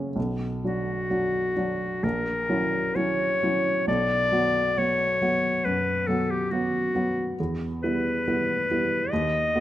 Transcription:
Already playing: grand piano F#2 C#3 A#3 C#4
0.16 grand piano B1
0.64 grand piano F#3 D4 F#4, clarinet F#4
1.10 grand piano F#3 D4 F#4
1.56 grand piano F#3 D4 F#4
2.03 grand piano A#1, clarinet A#4
2.49 grand piano F#3 C#4 E4
2.95 grand piano F#3 C#4 E4, clarinet C#5
3.43 grand piano F#3 C#4 E4
3.87 grand piano B1, clarinet D5
4.32 grand piano F#3 B3 F#4
4.77 grand piano F#3 B3 F#4, clarinet C#5
5.21 grand piano F#3 B3 F#4
5.65 grand piano F#2, clarinet B4
6.07 grand piano F#3 B3 F#4, clarinet A4
6.31 clarinet G4
6.51 grand piano F#3 B3 F#4, clarinet F#4
6.95 grand piano F#3 B3 F#4
7.40 grand piano E2
7.83 grand piano G3 B3 E4, clarinet B4
8.28 grand piano G3 B3 E4
8.71 grand piano G3 B3 E4
9.10 grand piano D#2, clarinet D#5
9.55 grand piano A3 B3 F#4

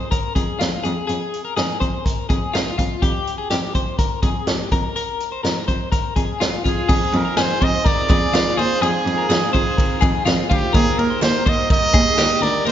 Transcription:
Already playing: clean electric guitar C5
0.11 clean electric guitar A#4, kick, closed hi-hat
0.35 cello F2, clean electric guitar G#4, kick, closed hi-hat
0.59 cello F2, clean electric guitar F4, snare, closed hi-hat
0.84 cello F2, clean electric guitar G#4, closed hi-hat
1.07 cello F2, clean electric guitar G#4, closed hi-hat
1.34 closed hi-hat
1.45 clean electric guitar A#4
1.56 cello F2, clean electric guitar G#4, snare, closed hi-hat
1.80 cello F2, clean electric guitar C5, kick, closed hi-hat
2.05 clean electric guitar A#4, kick, closed hi-hat
2.29 cello F2, clean electric guitar G#4, kick, closed hi-hat
2.53 cello F2, clean electric guitar F4, snare, closed hi-hat
2.78 cello F2, clean electric guitar F4, kick, closed hi-hat
3.02 cello F2, clean electric guitar G4, kick, closed hi-hat
3.27 closed hi-hat
3.38 clean electric guitar G#4
3.50 cello F2, clean electric guitar G4, snare, closed hi-hat
3.75 cello F2, clean electric guitar C5, kick, closed hi-hat
3.99 clean electric guitar A#4, kick, closed hi-hat
4.22 cello F2, clean electric guitar G#4, kick, closed hi-hat
4.47 cello F2, clean electric guitar G4, snare, closed hi-hat
4.72 cello F2, clean electric guitar A#4, kick, closed hi-hat
4.96 clean electric guitar A#4, closed hi-hat
5.20 closed hi-hat
5.32 clean electric guitar C5
5.43 cello F2, clean electric guitar A#4, snare, closed hi-hat
5.68 cello F2, clean electric guitar C5, kick, closed hi-hat
5.92 clean electric guitar A#4, kick, closed hi-hat
6.16 cello F2, clean electric guitar G#4, kick, closed hi-hat
6.40 cello F2, clean electric guitar F4, snare, closed hi-hat
6.64 cello F2, clean electric guitar F4, trumpet G#4, kick, closed hi-hat
6.89 cello F2, analog synth pad D#3 G#3 C4 F4, clean electric guitar G#4, kick, crash
7.13 cello F2, trumpet A#4, ride
7.25 clean electric guitar A#4
7.37 cello F2, clean electric guitar G#4, trumpet C5, snare, clap, ride
7.61 cello F2, clean electric guitar C5, trumpet D#5, kick, ride
7.85 clean electric guitar A#4, trumpet D5, kick, ride
8.09 cello F2, clean electric guitar G#4, kick, clap, ride
8.33 cello F2, clean electric guitar F4, snare, clap, ride
8.57 cello D#2, clean electric guitar G#4, trumpet C5, ride
8.82 cello F2, clean electric guitar G#4, trumpet G#4, ride
9.06 cello F2, ride
9.17 clean electric guitar A#4
9.29 cello F2, clean electric guitar G#4, snare, clap, ride
9.53 cello F2, trumpet G#4, clean electric guitar C5, kick, ride
9.77 clean electric guitar A#4, kick, ride
10.01 cello F2, clean electric guitar G#4, kick, clap, ride
10.26 cello F2, clean electric guitar F4, snare, clap, ride
10.50 cello D2, clean electric guitar F4, trumpet G4, kick, ride
10.72 cello D#2, analog synth pad G3 A#3 G4, trumpet G#4, clean electric guitar A#4, kick, ride
10.98 cello D#2, trumpet A#4, ride
11.10 clean electric guitar C5
11.22 cello D#2, clean electric guitar A#4, trumpet C5, snare, clap, ride
11.46 cello D#2, clean electric guitar C5, trumpet D#5, kick, ride
11.70 clean electric guitar A#4, trumpet D#5, kick, ride
11.93 cello D#2, clean electric guitar G#4, kick, clap, ride
12.17 cello D#2, clean electric guitar G4, snare, clap, ride
12.42 cello D2, clean electric guitar A#4, trumpet D5, ride
12.65 cello D#2, clean electric guitar A#4, trumpet C5, ride

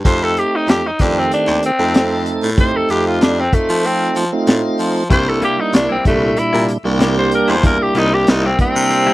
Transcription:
0.04 baritone saxophone F2, tonewheel organ A3 C4 D#4 G4, tenor saxophone C5, kick, closed hi-hat
0.23 tenor saxophone A4
0.37 tenor saxophone G4, closed hi-hat
0.56 tenor saxophone D#4
0.67 baritone saxophone F2, tenor saxophone G4, snare, closed hi-hat
0.84 baritone saxophone F2, tenor saxophone D#4
0.99 baritone saxophone F2, tonewheel organ D#3 A3 C4 G4, tenor saxophone D4, kick, closed hi-hat
1.18 tenor saxophone C4
1.31 tenor saxophone D4, closed hi-hat
1.47 baritone saxophone D#2
1.63 tenor saxophone C4, closed hi-hat
1.79 baritone saxophone F2, tonewheel organ A3 C4 D#4 A4
1.94 snare, closed hi-hat
2.26 closed hi-hat
2.42 baritone saxophone A2
2.57 tonewheel organ A3 C4 D#4 G4, tenor saxophone C5, kick, closed hi-hat
2.74 baritone saxophone F2, tenor saxophone A4
2.89 baritone saxophone F2, tenor saxophone G4, closed hi-hat
3.07 tenor saxophone F4
3.21 baritone saxophone F2, tenor saxophone D4, snare, closed hi-hat
3.40 tenor saxophone C4
3.53 tonewheel organ A3 C4 D#4 F4, tenor saxophone A3, kick, closed hi-hat
3.69 baritone saxophone F3
3.84 tenor saxophone C4, closed hi-hat
4.16 baritone saxophone F3, closed hi-hat
4.33 tonewheel organ A3 C4 D#4 F4
4.47 baritone saxophone A2, snare, closed hi-hat
4.79 baritone saxophone F3, closed hi-hat
5.10 baritone saxophone C2, clean electric guitar C3 G3 A#3 E4, tonewheel organ G3 A#3 D4 E4, tenor saxophone C5, kick, closed hi-hat
5.26 tenor saxophone A4, muted clean electric guitar stroke
5.41 clean electric guitar C3 G3 A#3 E4, tenor saxophone G4, closed hi-hat
5.58 tenor saxophone D#4, muted clean electric guitar stroke
5.73 baritone saxophone C2, tenor saxophone D4, muted clean electric guitar stroke, snare, closed hi-hat
5.89 baritone saxophone C2, clean electric guitar G3 A#3 E4, tenor saxophone C4
6.05 baritone saxophone C2, tonewheel organ A#2 G3 D4 E4, tenor saxophone A3, muted clean electric guitar stroke, kick, closed hi-hat
6.21 muted clean electric guitar stroke
6.36 tenor saxophone E4, muted clean electric guitar stroke, closed hi-hat
6.53 baritone saxophone A#2, clean electric guitar C3 G3 A#3 E4
6.68 closed hi-hat
6.84 baritone saxophone C2, tonewheel organ G3 A#3 D4 G4, muted clean electric guitar stroke
6.99 clean electric guitar C3 G3 A#3 E4, snare, closed hi-hat
7.16 tenor saxophone C5, muted clean electric guitar stroke
7.31 tenor saxophone A#4, closed hi-hat
7.48 baritone saxophone E2, clean electric guitar G3 A#3 E4, tenor saxophone C5
7.63 tonewheel organ G3 A#3 D4 E4, tenor saxophone A#4, kick, closed hi-hat
7.79 baritone saxophone C2, tenor saxophone G4, muted clean electric guitar stroke
7.95 baritone saxophone C2, clean electric guitar C3 G3 A#3 E4, tenor saxophone D#4, closed hi-hat
8.11 tenor saxophone G4, muted clean electric guitar stroke
8.26 baritone saxophone C2, tenor saxophone D#4, muted clean electric guitar stroke, snare, closed hi-hat
8.42 clean electric guitar G3 A#3 E4
8.46 tenor saxophone C4
8.58 tonewheel organ G3 A#3 D4 E4, tenor saxophone C4, muted clean electric guitar stroke, kick, closed hi-hat
8.75 baritone saxophone C3, muted clean electric guitar stroke
8.90 muted clean electric guitar stroke, closed hi-hat
9.06 clean electric guitar C3 G3 A#3 E4

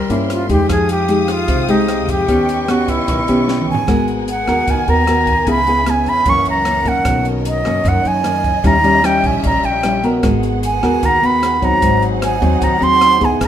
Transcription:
Already playing: nylon-string guitar G3, flute A#4, string section A#4 C5 E5 C6
0.10 upright bass G2, nylon-string guitar A#3 C#4 E4, closed hi-hat
0.30 flute F4, cross-stick, closed hi-hat
0.49 upright bass E2, nylon-string guitar G#3 D#4 G4, flute G4, kick, closed hi-hat
0.69 upright bass F2, nylon-string guitar F3, flute G#4, string section F5 G5 D#6, kick, cross-stick, closed hi-hat
0.89 flute G4, closed hi-hat
1.08 nylon-string guitar G#3 D#4 G4, closed hi-hat
1.28 flute F4, cross-stick, closed hi-hat
1.48 upright bass C2, nylon-string guitar C3, kick, closed hi-hat
1.68 upright bass C2, nylon-string guitar G#3 D#4 G4, flute D#4, closed hi-hat
1.88 cross-stick, closed hi-hat
2.08 upright bass F2, flute G4, kick, closed hi-hat
2.28 upright bass D#2, nylon-string guitar D#3 B3 C#4 G4, string section B4 D#5 C#6, kick, closed hi-hat
2.49 closed hi-hat
2.68 nylon-string guitar B3 C#4 G4, flute F#4, cross-stick, closed hi-hat
2.88 flute E4, kick, closed hi-hat
3.07 upright bass B1, nylon-string guitar D#3, kick, closed hi-hat
3.28 upright bass B1, nylon-string guitar B3 C#4 G4, closed hi-hat
3.48 snare
3.62 mid tom
3.69 upright bass D#2, flute G#5
3.74 floor tom
3.87 upright bass G#1, nylon-string guitar G#3 B3 F#4 A#4, string section B3 A#4 F#5 G#5, kick, cross-stick, closed hi-hat
4.08 closed hi-hat
4.28 flute F#5, closed hi-hat
4.48 upright bass D#2, nylon-string guitar B3 F#4 A#4, cross-stick, closed hi-hat
4.68 upright bass D#2, nylon-string guitar D#3, flute G#5, kick, closed hi-hat
4.88 upright bass D#2, nylon-string guitar B3 F#4 A#4, flute A#5, closed hi-hat
5.07 nylon-string guitar B3 F#4 A#4, cross-stick, closed hi-hat
5.27 kick, closed hi-hat
5.47 upright bass C#2, nylon-string guitar C#3 B3 E4 G#4, string section C#4 B4 E5, flute B5, kick, closed hi-hat
5.67 nylon-string guitar B3 E4 G#4, closed hi-hat
5.86 nylon-string guitar B3 E4 G#4, flute G#5, cross-stick, closed hi-hat
6.06 upright bass E2, flute B5, closed hi-hat
6.26 upright bass F#2, nylon-string guitar F#2 E3 A#3 C#4, string section A#4 F#5, flute C#6, kick, closed hi-hat
6.45 upright bass C#2, closed hi-hat
6.50 flute A#5
6.65 nylon-string guitar E3 A#3 C#4, cross-stick, closed hi-hat
6.85 nylon-string guitar D#3 A#3 C#4, flute F#5, kick, closed hi-hat
7.05 upright bass B1, nylon-string guitar B2, string section C#5 D#5, kick, cross-stick, closed hi-hat
7.25 closed hi-hat
7.45 flute D#5, closed hi-hat
7.65 upright bass F#2, nylon-string guitar D#3 A#3 C#4, cross-stick, closed hi-hat
7.84 nylon-string guitar F#2, upright bass F#2, kick, closed hi-hat
7.88 flute F#5
8.05 upright bass F#2, flute G#5, closed hi-hat
8.24 nylon-string guitar D#3 A#3 C#4, cross-stick, closed hi-hat
8.44 kick, closed hi-hat
8.63 upright bass D#2, nylon-string guitar D#3 G3 C#4 E4, string section C#4 G4 E5, flute A#5, kick, closed hi-hat
8.84 nylon-string guitar G3 C#4 E4, closed hi-hat
9.04 nylon-string guitar G3 C#4 E4, flute G5, cross-stick, closed hi-hat
9.24 upright bass A#1, flute G#5, kick, closed hi-hat
9.44 upright bass A#1, nylon-string guitar A#2, flute A#5, kick, closed hi-hat
9.64 upright bass A#1, flute G5, closed hi-hat
9.83 nylon-string guitar G3 C#4 E4, cross-stick, closed hi-hat
10.03 nylon-string guitar B3 F#4 A#4, closed hi-hat
10.22 upright bass G#1, nylon-string guitar G#3, string section B3 F#4 G#4 F#5, kick, cross-stick, closed hi-hat
10.43 closed hi-hat
10.63 flute G#5, closed hi-hat
10.83 upright bass D#2, nylon-string guitar B3 F#4 A#4, cross-stick, closed hi-hat
11.03 upright bass D#2, nylon-string guitar D#3, flute A#5, kick, closed hi-hat
11.22 upright bass D#2, nylon-string guitar B3 F#4, flute B5, closed hi-hat
11.43 cross-stick, closed hi-hat
11.62 nylon-string guitar F#3 C4 D#4, flute A#5, kick, closed hi-hat
11.81 upright bass G#1, nylon-string guitar G#2, string section D#4 C5 F#5, kick, closed hi-hat
12.02 closed hi-hat
12.22 flute G#5, cross-stick, closed hi-hat
12.41 upright bass D#2, nylon-string guitar F#3 C4 D#4, closed hi-hat
12.61 upright bass D#2, nylon-string guitar D#3, flute A#5, kick, closed hi-hat
12.80 upright bass D#2, nylon-string guitar F#3 C4 D#4, flute C6, closed hi-hat
13.01 cross-stick, closed hi-hat
13.20 nylon-string guitar B3 E4 G#4, kick, closed hi-hat
13.25 flute G#5
13.40 upright bass C#2, nylon-string guitar C#3, string section C#4 G#4 B4 E5, kick, cross-stick, closed hi-hat

